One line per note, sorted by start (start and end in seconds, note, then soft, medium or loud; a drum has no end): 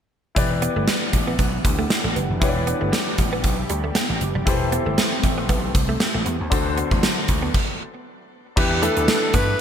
0.35 0.66 E1 medium
0.35 1.09 E3 medium
0.35 4.43 E3 medium
0.35 4.43 B3 medium
0.35 4.43 D4 medium
0.35 2.37 E4 medium
0.35 2.37 G4 medium
0.35 6.48 G4 medium
0.35 2.38 B4 medium
0.35 2.38 D5 medium
0.35 4.43 F#5 medium
0.35 kick medium
0.35 closed hi-hat medium
0.51 muted clean electric guitar stroke soft
0.62 0.74 B3 medium
0.62 closed hi-hat medium
0.76 0.85 G1 medium
0.76 0.86 A3 medium
0.88 0.99 G3 medium
0.88 snare medium
0.88 closed hi-hat medium
1.02 muted clean electric guitar stroke soft
1.13 1.33 A1 medium
1.13 kick medium
1.13 closed hi-hat medium
1.27 1.37 B3 medium
1.39 1.58 B1 medium
1.39 1.50 B3 medium
1.39 kick medium
1.39 closed hi-hat medium
1.65 1.84 D2 medium
1.65 muted clean electric guitar stroke soft
1.65 kick medium
1.65 closed hi-hat medium
1.79 1.88 A3 medium
1.90 muted clean electric guitar stroke soft
1.90 snare loud
1.90 closed hi-hat medium
2.04 2.13 A1 medium
2.04 2.14 A3 medium
2.16 2.27 F#1 medium
2.16 2.27 B3 medium
2.16 closed hi-hat medium
2.30 2.39 F1 medium
2.40 2.71 E1 medium
2.40 3.14 E3 medium
2.40 4.42 E4 medium
2.40 4.42 G4 medium
2.40 4.43 B4 medium
2.40 2.49 C#5 medium
2.40 kick loud
2.40 closed hi-hat medium
2.49 4.46 D5 medium
2.56 muted clean electric guitar stroke soft
2.67 2.79 B3 medium
2.67 closed hi-hat medium
2.81 2.90 G1 medium
2.81 2.90 A3 medium
2.93 3.04 G3 medium
2.93 snare loud
2.93 closed hi-hat medium
3.07 muted clean electric guitar stroke soft
3.18 3.38 A1 medium
3.18 kick medium
3.18 closed hi-hat medium
3.33 3.42 B3 medium
3.44 3.63 B1 medium
3.44 muted clean electric guitar stroke soft
3.44 kick medium
3.44 closed hi-hat medium
3.70 3.89 D2 medium
3.70 3.81 G3 medium
3.70 closed hi-hat medium
3.84 3.93 A3 medium
3.95 4.07 B3 medium
3.95 snare loud
3.95 closed hi-hat medium
4.10 4.18 A1 medium
4.10 muted clean electric guitar stroke soft
4.21 4.32 F#1 medium
4.21 closed hi-hat medium
4.35 4.44 F1 medium
4.35 4.45 G3 medium
4.45 4.77 E1 medium
4.45 5.20 E3 medium
4.45 7.51 A3 medium
4.45 7.51 C4 medium
4.45 6.47 E4 medium
4.45 6.48 G4 medium
4.45 6.48 A4 medium
4.45 6.49 C5 medium
4.45 kick loud
4.45 closed hi-hat medium
4.61 muted clean electric guitar stroke soft
4.72 4.84 B3 medium
4.72 closed hi-hat medium
4.86 4.95 G1 medium
4.86 4.96 A3 medium
4.98 5.09 G3 medium
4.98 snare loud
4.98 closed hi-hat medium
5.12 muted clean electric guitar stroke soft
5.23 5.43 A1 medium
5.23 kick medium
5.23 closed hi-hat medium
5.38 5.47 B3 medium
5.49 5.69 B1 medium
5.49 5.61 B3 medium
5.49 kick medium
5.49 closed hi-hat medium
5.75 5.94 C2 medium
5.75 muted clean electric guitar stroke soft
5.75 kick medium
5.75 closed hi-hat medium
5.89 5.98 A3 medium
6.00 muted clean electric guitar stroke soft
6.00 snare loud
6.00 closed hi-hat medium
6.14 6.23 A1 medium
6.14 6.24 A3 medium
6.26 6.37 E2 medium
6.26 6.37 B3 medium
6.26 closed hi-hat medium
6.40 6.49 D#2 medium
6.50 6.82 D2 medium
6.50 7.53 D3 medium
6.50 7.24 D3 medium
6.50 7.51 D4 medium
6.50 7.53 E4 medium
6.50 7.52 F#4 medium
6.50 7.53 F#4 medium
6.50 7.52 A4 medium
6.50 7.53 C5 medium
6.50 kick loud
6.50 closed hi-hat medium
6.66 muted clean electric guitar stroke soft
6.78 6.89 B3 medium
6.78 closed hi-hat medium
6.91 7.00 E2 medium
6.91 7.01 A3 medium
6.91 kick medium
7.03 7.14 F#3 medium
7.03 snare loud
7.03 closed hi-hat medium
7.17 muted clean electric guitar stroke soft
7.28 7.48 D2 medium
7.28 kick medium
7.28 closed hi-hat medium
7.42 7.52 B3 medium
7.54 kick medium
7.54 crash medium
8.56 8.87 E2 medium
8.56 9.30 E3 medium
8.56 8.77 D4 medium
8.56 8.77 E4 medium
8.56 8.77 G4 medium
8.56 8.85 G4 medium
8.56 8.77 B4 medium
8.56 kick loud
8.56 crash medium
8.71 muted clean electric guitar stroke soft
8.82 8.94 A3 medium
8.82 9.60 D4 medium
8.82 9.60 E4 medium
8.82 9.60 G4 medium
8.82 9.36 A4 loud
8.82 9.60 B4 medium
8.82 closed hi-hat medium
8.97 9.05 D2 medium
8.97 9.06 B3 medium
8.97 closed hi-hat soft
9.08 snare loud
9.08 closed hi-hat medium
9.34 9.53 G2 medium
9.34 9.45 B3 medium
9.34 9.61 B4 loud
9.34 kick medium
9.34 closed hi-hat medium